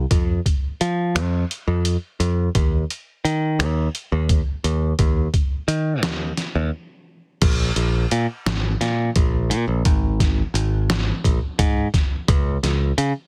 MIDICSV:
0, 0, Header, 1, 3, 480
1, 0, Start_track
1, 0, Tempo, 695249
1, 78, Time_signature, 7, 3, 24, 8
1, 9162, End_track
2, 0, Start_track
2, 0, Title_t, "Picked electric bass"
2, 0, Program_c, 0, 34
2, 75, Note_on_c, 0, 41, 74
2, 271, Note_off_c, 0, 41, 0
2, 558, Note_on_c, 0, 53, 75
2, 795, Note_on_c, 0, 41, 77
2, 805, Note_off_c, 0, 53, 0
2, 991, Note_off_c, 0, 41, 0
2, 1156, Note_on_c, 0, 41, 84
2, 1352, Note_off_c, 0, 41, 0
2, 1517, Note_on_c, 0, 41, 73
2, 1713, Note_off_c, 0, 41, 0
2, 1761, Note_on_c, 0, 39, 82
2, 1956, Note_off_c, 0, 39, 0
2, 2241, Note_on_c, 0, 51, 74
2, 2480, Note_on_c, 0, 39, 83
2, 2490, Note_off_c, 0, 51, 0
2, 2675, Note_off_c, 0, 39, 0
2, 2846, Note_on_c, 0, 39, 81
2, 3039, Note_off_c, 0, 39, 0
2, 3205, Note_on_c, 0, 39, 76
2, 3398, Note_off_c, 0, 39, 0
2, 3444, Note_on_c, 0, 39, 77
2, 3638, Note_off_c, 0, 39, 0
2, 3920, Note_on_c, 0, 51, 70
2, 4164, Note_off_c, 0, 51, 0
2, 4164, Note_on_c, 0, 39, 78
2, 4358, Note_off_c, 0, 39, 0
2, 4525, Note_on_c, 0, 39, 78
2, 4622, Note_off_c, 0, 39, 0
2, 5121, Note_on_c, 0, 34, 94
2, 5316, Note_off_c, 0, 34, 0
2, 5359, Note_on_c, 0, 34, 85
2, 5555, Note_off_c, 0, 34, 0
2, 5603, Note_on_c, 0, 46, 87
2, 5701, Note_off_c, 0, 46, 0
2, 5842, Note_on_c, 0, 32, 83
2, 6037, Note_off_c, 0, 32, 0
2, 6081, Note_on_c, 0, 46, 73
2, 6276, Note_off_c, 0, 46, 0
2, 6322, Note_on_c, 0, 34, 87
2, 6559, Note_on_c, 0, 46, 80
2, 6570, Note_off_c, 0, 34, 0
2, 6658, Note_off_c, 0, 46, 0
2, 6680, Note_on_c, 0, 34, 78
2, 6779, Note_off_c, 0, 34, 0
2, 6802, Note_on_c, 0, 32, 89
2, 7191, Note_off_c, 0, 32, 0
2, 7276, Note_on_c, 0, 32, 83
2, 7667, Note_off_c, 0, 32, 0
2, 7762, Note_on_c, 0, 34, 75
2, 7860, Note_off_c, 0, 34, 0
2, 8000, Note_on_c, 0, 44, 88
2, 8195, Note_off_c, 0, 44, 0
2, 8480, Note_on_c, 0, 37, 103
2, 8675, Note_off_c, 0, 37, 0
2, 8721, Note_on_c, 0, 37, 83
2, 8915, Note_off_c, 0, 37, 0
2, 8960, Note_on_c, 0, 49, 92
2, 9057, Note_off_c, 0, 49, 0
2, 9162, End_track
3, 0, Start_track
3, 0, Title_t, "Drums"
3, 74, Note_on_c, 9, 36, 92
3, 75, Note_on_c, 9, 42, 76
3, 143, Note_off_c, 9, 36, 0
3, 144, Note_off_c, 9, 42, 0
3, 315, Note_on_c, 9, 36, 59
3, 318, Note_on_c, 9, 42, 55
3, 384, Note_off_c, 9, 36, 0
3, 387, Note_off_c, 9, 42, 0
3, 558, Note_on_c, 9, 42, 51
3, 627, Note_off_c, 9, 42, 0
3, 799, Note_on_c, 9, 26, 86
3, 799, Note_on_c, 9, 42, 69
3, 868, Note_off_c, 9, 26, 0
3, 868, Note_off_c, 9, 42, 0
3, 1042, Note_on_c, 9, 42, 54
3, 1111, Note_off_c, 9, 42, 0
3, 1277, Note_on_c, 9, 42, 71
3, 1346, Note_off_c, 9, 42, 0
3, 1521, Note_on_c, 9, 42, 52
3, 1590, Note_off_c, 9, 42, 0
3, 1760, Note_on_c, 9, 36, 93
3, 1760, Note_on_c, 9, 42, 69
3, 1829, Note_off_c, 9, 36, 0
3, 1829, Note_off_c, 9, 42, 0
3, 2005, Note_on_c, 9, 42, 53
3, 2074, Note_off_c, 9, 42, 0
3, 2246, Note_on_c, 9, 42, 50
3, 2315, Note_off_c, 9, 42, 0
3, 2485, Note_on_c, 9, 26, 86
3, 2485, Note_on_c, 9, 42, 63
3, 2554, Note_off_c, 9, 26, 0
3, 2554, Note_off_c, 9, 42, 0
3, 2725, Note_on_c, 9, 42, 48
3, 2794, Note_off_c, 9, 42, 0
3, 2964, Note_on_c, 9, 42, 64
3, 2965, Note_on_c, 9, 36, 95
3, 3033, Note_off_c, 9, 42, 0
3, 3034, Note_off_c, 9, 36, 0
3, 3206, Note_on_c, 9, 42, 51
3, 3275, Note_off_c, 9, 42, 0
3, 3443, Note_on_c, 9, 42, 66
3, 3444, Note_on_c, 9, 36, 92
3, 3512, Note_off_c, 9, 42, 0
3, 3513, Note_off_c, 9, 36, 0
3, 3684, Note_on_c, 9, 36, 68
3, 3685, Note_on_c, 9, 42, 51
3, 3753, Note_off_c, 9, 36, 0
3, 3754, Note_off_c, 9, 42, 0
3, 3924, Note_on_c, 9, 42, 54
3, 3993, Note_off_c, 9, 42, 0
3, 4162, Note_on_c, 9, 38, 80
3, 4162, Note_on_c, 9, 42, 68
3, 4231, Note_off_c, 9, 38, 0
3, 4231, Note_off_c, 9, 42, 0
3, 4401, Note_on_c, 9, 38, 31
3, 4401, Note_on_c, 9, 42, 54
3, 4470, Note_off_c, 9, 38, 0
3, 4470, Note_off_c, 9, 42, 0
3, 5120, Note_on_c, 9, 42, 84
3, 5120, Note_on_c, 9, 49, 85
3, 5122, Note_on_c, 9, 36, 94
3, 5189, Note_off_c, 9, 42, 0
3, 5189, Note_off_c, 9, 49, 0
3, 5191, Note_off_c, 9, 36, 0
3, 5359, Note_on_c, 9, 42, 62
3, 5428, Note_off_c, 9, 42, 0
3, 5602, Note_on_c, 9, 42, 63
3, 5671, Note_off_c, 9, 42, 0
3, 5844, Note_on_c, 9, 38, 99
3, 5844, Note_on_c, 9, 42, 72
3, 5913, Note_off_c, 9, 38, 0
3, 5913, Note_off_c, 9, 42, 0
3, 6084, Note_on_c, 9, 38, 34
3, 6084, Note_on_c, 9, 42, 59
3, 6153, Note_off_c, 9, 38, 0
3, 6153, Note_off_c, 9, 42, 0
3, 6321, Note_on_c, 9, 42, 76
3, 6323, Note_on_c, 9, 36, 98
3, 6390, Note_off_c, 9, 42, 0
3, 6392, Note_off_c, 9, 36, 0
3, 6565, Note_on_c, 9, 42, 57
3, 6634, Note_off_c, 9, 42, 0
3, 6802, Note_on_c, 9, 42, 75
3, 6803, Note_on_c, 9, 36, 107
3, 6871, Note_off_c, 9, 42, 0
3, 6872, Note_off_c, 9, 36, 0
3, 7042, Note_on_c, 9, 36, 72
3, 7044, Note_on_c, 9, 38, 34
3, 7044, Note_on_c, 9, 42, 60
3, 7111, Note_off_c, 9, 36, 0
3, 7114, Note_off_c, 9, 38, 0
3, 7114, Note_off_c, 9, 42, 0
3, 7285, Note_on_c, 9, 42, 62
3, 7354, Note_off_c, 9, 42, 0
3, 7524, Note_on_c, 9, 38, 97
3, 7524, Note_on_c, 9, 42, 73
3, 7593, Note_off_c, 9, 38, 0
3, 7593, Note_off_c, 9, 42, 0
3, 7763, Note_on_c, 9, 36, 64
3, 7767, Note_on_c, 9, 42, 65
3, 7832, Note_off_c, 9, 36, 0
3, 7836, Note_off_c, 9, 42, 0
3, 8002, Note_on_c, 9, 36, 100
3, 8002, Note_on_c, 9, 42, 90
3, 8071, Note_off_c, 9, 36, 0
3, 8071, Note_off_c, 9, 42, 0
3, 8242, Note_on_c, 9, 36, 70
3, 8244, Note_on_c, 9, 38, 34
3, 8244, Note_on_c, 9, 42, 57
3, 8311, Note_off_c, 9, 36, 0
3, 8313, Note_off_c, 9, 38, 0
3, 8313, Note_off_c, 9, 42, 0
3, 8481, Note_on_c, 9, 36, 109
3, 8481, Note_on_c, 9, 42, 90
3, 8550, Note_off_c, 9, 36, 0
3, 8550, Note_off_c, 9, 42, 0
3, 8724, Note_on_c, 9, 38, 34
3, 8724, Note_on_c, 9, 42, 66
3, 8793, Note_off_c, 9, 38, 0
3, 8793, Note_off_c, 9, 42, 0
3, 8962, Note_on_c, 9, 42, 64
3, 9031, Note_off_c, 9, 42, 0
3, 9162, End_track
0, 0, End_of_file